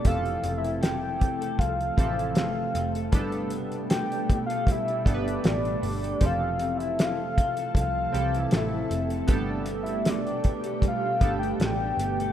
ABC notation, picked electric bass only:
X:1
M:4/4
L:1/16
Q:"Swing 16ths" 1/4=78
K:Gmix
V:1 name="Picked electric bass" clef=bass
F,,,2 F,,,6 C,,2 A,,,2 G,,,2 F,,,2 | G,,,8- G,,, z G,,,2 A,,,2 G,,,2 | F,,,8 C,,2 C,,2 A,,,2 F,,,2 | G,,,8- G,,, z G,,,2 A,,,2 G,,,2 |]